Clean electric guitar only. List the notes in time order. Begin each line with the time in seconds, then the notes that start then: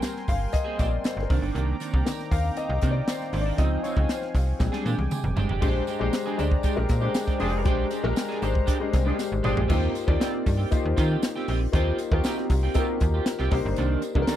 0.01 muted clean electric guitar stroke
0.14 muted clean electric guitar stroke
0.40 muted clean electric guitar stroke
0.52 muted clean electric guitar stroke
0.64 A#3 C4 G#4
0.78 A#3 C4 G4
0.91 muted clean electric guitar stroke
1.04 muted clean electric guitar stroke
1.17 muted clean electric guitar stroke
1.29 D#3 A#3 D4
1.42 D#3 A#3 D4
1.54 D#3 A#3 D4
1.80 D#3 A#3 D4
1.92 D#3 A#3 D4
2.06 muted clean electric guitar stroke
2.19 muted clean electric guitar stroke
2.45 muted clean electric guitar stroke
2.57 muted clean electric guitar stroke
2.70 muted clean electric guitar stroke
2.82 D#3 A#3 D4
2.96 muted clean electric guitar stroke
3.08 muted clean electric guitar stroke
3.21 muted clean electric guitar stroke
3.33 D#3 A#3 D4
3.46 D#3 A#3 D4
3.59 F3 C4 D#4
3.84 F3 C4 D#4
3.96 F3 C4 D#4
4.09 muted clean electric guitar stroke
4.22 muted clean electric guitar stroke
4.47 muted clean electric guitar stroke
4.60 muted clean electric guitar stroke
4.72 G#3 D4 G#4
4.85 G#3 D4 G4
4.98 muted clean electric guitar stroke
5.10 muted clean electric guitar stroke
5.24 muted clean electric guitar stroke
5.36 G#3 D4 G4
5.49 G#3 D4 G4
5.61 G#3 D4 G4
5.87 G#3 D4 G4
6.01 G#3 D4 G4
6.14 muted clean electric guitar stroke
6.26 G#3 D4 G#4
6.39 G#3 D4 G4
6.52 muted clean electric guitar stroke
6.63 G#3 D4 G4
6.77 muted clean electric guitar stroke
6.89 muted clean electric guitar stroke
7.01 G#3 D4 G4
7.15 muted clean electric guitar stroke
7.27 G#3 D4 G4
7.40 G#3 D4 G4
7.53 muted clean electric guitar stroke
7.65 G#3 D4 G4
7.91 G#3 D4 G4
8.04 G#3 D4 G4
8.16 muted clean electric guitar stroke
8.29 G#3 D4 G#4
8.41 G#3 D4 G4
8.54 muted clean electric guitar stroke
8.66 G#3 D4 G4
8.79 muted clean electric guitar stroke
8.92 muted clean electric guitar stroke
9.05 G#3 D4 G4
9.17 muted clean electric guitar stroke
9.30 muted clean electric guitar stroke
9.43 G#3 D4 G4
9.56 G#3 D4 G4
9.68 C4 F4 G4
9.94 muted clean electric guitar stroke
10.07 C4 F4 G4
10.20 C4 F4 G4
10.33 muted clean electric guitar stroke
10.46 muted clean electric guitar stroke
10.57 C4 F4 G4
10.70 muted clean electric guitar stroke
10.83 muted clean electric guitar stroke
10.96 C4 F4 G4
11.09 C4 F4 G4
11.22 muted clean electric guitar stroke
11.36 C4 F4 G4
11.48 C4 F4 G4
11.61 muted clean electric guitar stroke
11.74 C4 F4 G4
12.00 muted clean electric guitar stroke
12.12 C4 F4 G4
12.25 C4 F4 G4
12.38 muted clean electric guitar stroke
12.49 muted clean electric guitar stroke
12.63 C4 F4 G4
12.75 C4 F4 G4
12.88 muted clean electric guitar stroke
13.01 muted clean electric guitar stroke
13.14 C4 F4 G4
13.26 muted clean electric guitar stroke
13.39 C4 F4 G4
13.52 muted clean electric guitar stroke
13.65 muted clean electric guitar stroke
13.77 D#3 A#3 D4
14.03 muted clean electric guitar stroke
14.15 D#3 A#3 D4
14.28 D#3 A#3 D4